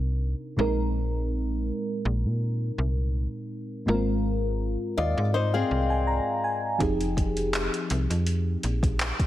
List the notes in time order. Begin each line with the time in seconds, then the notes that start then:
Already playing: C2 C3 C4 D4 D#4 A#4
0.57 A#1 A#2 G#3 C4 D#4 A#4
2.05 A#1
2.25 A#2
2.78 C2
3.86 G#1 G#2 G#3 A#3 F4 A#4
3.94 C4
4.97 D#2 F4 D5 D#5
5.17 G#2 D5
5.34 D#4 C5 D#5
5.54 C4 G#4 F5
5.71 C2
5.90 G#5
6.07 A#5
6.44 G#5
6.78 F1 F3 C4 D#4 G4 G#4, kick, closed hi-hat
7.01 closed hi-hat
7.17 kick, closed hi-hat
7.37 closed hi-hat
7.54 clap, closed hi-hat
7.74 closed hi-hat
7.90 C2, closed hi-hat
8.10 F2, closed hi-hat
8.27 closed hi-hat
8.63 A#1, closed hi-hat
8.83 kick, closed hi-hat
9.00 clap, closed hi-hat
9.19 kick, closed hi-hat